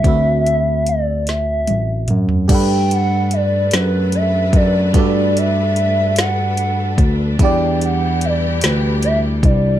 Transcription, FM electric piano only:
\new Staff \with { instrumentName = "FM electric piano" } { \time 6/8 \key g \major \tempo 4. = 49 <d a c' fis' b' e''>2. | <d' g' a' b'>2. | <g d' fis' a' d''>2. | <e d' e' g' d''>2. | }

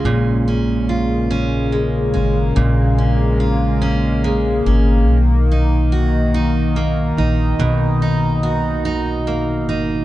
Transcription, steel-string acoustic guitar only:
\new Staff \with { instrumentName = "Steel-string acoustic guitar" } { \time 6/8 \key bes \minor \tempo 4. = 48 bes,8 des'8 f'8 des'8 aes8 des'8 | bes,8 des'8 f'8 des'8 aes8 des'8 | r8 ees'8 ges'8 ees'8 bes8 ees'8 | ces8 ees'8 ges'8 ees'8 bes8 ees'8 | }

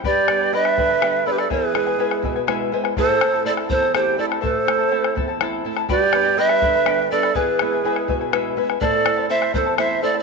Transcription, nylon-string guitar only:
\new Staff \with { instrumentName = "Nylon-string guitar" } { \time 6/8 \key g \mixolydian \tempo 4. = 82 g,8 <g b d'>8 <g b d'>8 d8 <g b d'>8 <g b d'>8 | e,8 <gis b e'>8 <gis b e'>8 b,8 <gis b e' e''>8 <gis b e' c''>8 | a,8 <a c' e'>8 <a c' e'>8 e,8 <a c' e'>8 <a c' e'>8 | a,8 <a c' e'>8 <a c' e'>8 e,8 <a c' e'>8 <a c' e'>8 |
g,8 <g b d'>8 <g b d'>8 d8 <g b d'>8 <g b d'>8 | e,8 <gis b e'>8 <gis b e'>8 b,8 <gis b e'>8 <gis b e'>8 | a,8 <a c' e'>8 <a c' e'>8 e,8 <a c' e'>8 <a c' e'>8 | }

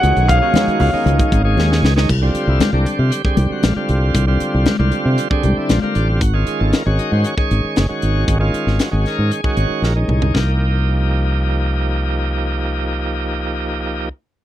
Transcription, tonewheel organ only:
<<
  \new Staff \with { instrumentName = "Tonewheel organ" } { \time 4/4 \key c \minor \tempo 4 = 116 r1 | r8 g'16 e'16 f'16 bes16 d'16 f'16 g'16 aes'16 g'16 fis'16 f'4~ | f'4 r4 r16 aes'16 g'16 e'16 f'16 bes16 d'16 f'16 | ges'16 r16 aes'16 a'16 bes'16 des''16 ees''16 c''16 des''2 |
r4 ges'8 bes'8 aes'8 des''8 bes'8 r8 | r1 | r1 | }
  \new Staff \with { instrumentName = "Tonewheel organ" } { \time 4/4 \key c \minor <ees aes des' ges'>8. <ees aes des' ges'>4 <ees aes des' ees'>4 <ees aes des' aes'>4 <ees aes des' ees'>16 | r16 <d g c' f'>4 <d g c' d'>4 <d g c' g'>4 <d g c' f'>8.~ | <d g c' f'>16 <d g c' f'>4 <d g c' f'>4 <d g c' d'>4 <d g c' f'>8. | r16 <ees aes des' f'>4 <ees aes des' ges'>4 <ees aes des' aes'>4 <ees aes des' ges'>8.~ |
<ees aes des' ges'>16 <ees aes des' f'>4 <ees aes des' aes'>4 <ees aes des' ges'>4 <ees aes des' ees'>8. | <f bes ees' g'>1~ | <f bes ees' g'>1 | }
>>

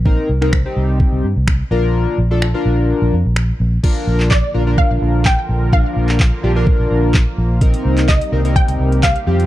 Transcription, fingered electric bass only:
\new Staff \with { instrumentName = "Fingered electric bass" } { \clef bass \time 4/4 \key bes \major \tempo 4 = 127 bes,,8 c,4 c,8. c,16 g,16 c,8. bes,,8~ | bes,,8 bes,,4 bes,,8. bes,,16 f,16 bes,,8. bes,,8 | r8 bes,,4 bes,,8. bes,,16 bes,,4 bes,,8~ | bes,,8 bes,,4 bes,,8. bes,,16 bes,,4 bes,,8~ |
bes,,8 c,4 c,8. c,16 c,4 f,8 | }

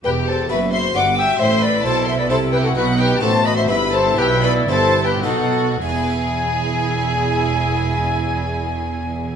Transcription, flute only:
\new Staff \with { instrumentName = "Flute" } { \time 3/4 \key b \phrygian \tempo 4 = 120 b'8 c''8 e''8 e''8 fis''8 g''8 | e''8 d''8 c''8 e''16 d''16 c''8 b'16 a'16 | b'8 b'8 c''8 dis''16 e''16 e''8 c''8 | b'8 d''8 \tuplet 3/2 { c''4 b'8 } a'4 |
gis''2.~ | gis''2. | }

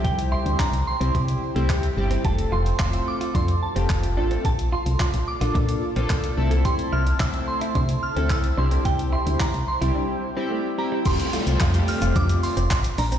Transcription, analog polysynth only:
\new Staff \with { instrumentName = "Analog polysynth" } { \time 4/4 \key f \major \tempo 4 = 109 <g c' e' g'>4 r8. <g c' e' g'>8. r16 <g c' e' g'>8 r16 <g c' e' g'>16 r16 | <a c' f' a'>8. r16 <a c' f' a'>4~ <a c' f' a'>16 r8 <a c' f' g'>8 r16 <a c' f' a'>8 | r4. r16 <bes d' f' a'>8. r16 <bes d' f' a'>8 r16 <a c' e' a'>8~ | <a c' e' a'>8. r16 <a c' e' c''>4~ <a c' e' c''>16 r8 <a c' e' a'>8 r16 <g c' e' g'>8~ |
<g c' e' g'>4 r8. <g c' e' g'>8. r16 <g c' e' g'>8 r16 <g c' e' g'>16 r16 | <g a c' g'>16 r16 <g a c' f' a'>8 r16 <g a c' f' g'>4. r4 r16 | }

